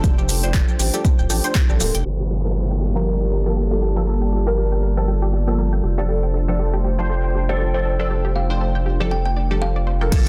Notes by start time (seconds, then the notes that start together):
Already playing: F3 A3 D4 F4 A4 C5 G5
0.04 F1 G4, kick, closed hi-hat, maracas
0.18 G4, maracas
0.29 G4, open hi-hat, maracas
0.43 F3 D4 C5 G5, closed hi-hat, maracas
0.54 A4, kick, clap, closed hi-hat, maracas
0.68 G5, maracas
0.79 A1 G4, open hi-hat, maracas
0.94 F3 D4 G4 A4, closed hi-hat, maracas
1.05 G4, kick, closed hi-hat, maracas
1.19 D1 G5, maracas
1.30 A1 F3 D4 G4 A4, open hi-hat, maracas
1.44 F3 D4 C5 G5, closed hi-hat, maracas
1.55 G4, kick, clap, closed hi-hat, maracas
1.69 A1 F3 D4 G4 A4, maracas
1.80 D1 F3 A#3 G4 A4, open hi-hat, maracas
1.95 F1 G5, closed hi-hat, maracas
2.05 G1 G3 A#3 F4 G4 A5, downlifter
2.20 G4 D5
2.31 G4
2.45 F3 A#3 A4 G5
2.56 A#4
2.70 G5
2.81 G4
2.87 A5
2.95 F3 A#3 G4 A#4
3.06 G4
3.21 G5
3.32 A#4
3.45 F3 A#3 A4 G5
3.57 G4
3.71 F3 A#3 G4 A4
3.82 G4
3.96 F3 A#3 A4 G5
4.07 A#4
4.22 G5
4.32 G4
4.46 F3 A#3 G4 A#4
4.58 G4
4.72 G5
4.83 A#4
4.97 F3 A#3 A4 G5
5.08 G4
5.22 G4
5.33 G4
5.47 F3 A#3 A4 G5
5.59 A#4
5.73 G5
5.83 F1 A3 D4 F4 G4 C5
5.98 F3 D4 G4 A4 C5
6.09 G4
6.23 G5
6.34 A4
6.48 F3 D4 A4 G5
6.59 G4
6.73 G4
6.84 G4
6.98 F3 D4 C5 G5
7.10 A4
7.24 G5
7.35 G4
7.49 F3 D4 G4 A4 C5
7.60 G4
7.74 F3 D4 A4 C5 G5
7.85 A4
7.99 F3 D4 A4 G5
8.10 G4
8.25 G4
8.36 G4 F5
8.50 F3 D4 C5 G5
8.61 A4
8.75 G5
8.86 G4
9.00 F3 D4 G4 A4
9.11 G4 G5
9.26 G5
9.37 D5
9.50 F3 D4 G4 A4
9.62 G4 F5
9.76 D5
9.87 C5
10.01 F3 A#3 A4 G5
10.12 G1 F3 G3 A#3 F4 G4 A4, kick, closed hi-hat, crash, impact, maracas